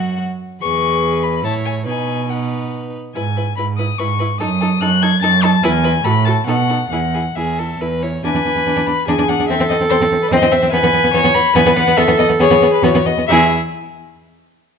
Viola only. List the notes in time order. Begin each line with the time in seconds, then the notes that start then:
Already playing: F#3
0.62 G#4
1.44 E4
1.86 D#4
2.30 D#4
3.15 E4
3.37 E4
3.58 E4
3.78 E4
3.99 E4
4.20 E4
4.41 D#4
4.62 D#4
4.82 D#4
5.02 D#4
5.22 D#4
5.43 D#4
5.63 E4
5.85 E4
6.05 F#4
6.26 F#4
6.48 D#4
6.70 D#4
6.92 E4
7.14 E4
7.37 E4
7.58 E4
7.81 E4
8.02 E4
8.24 B4
9.08 G#4
9.49 A4
10.32 C5
10.73 B4
11.14 C#5
11.56 B4
11.97 A4
12.40 G#4
12.84 F#4
13.28 E4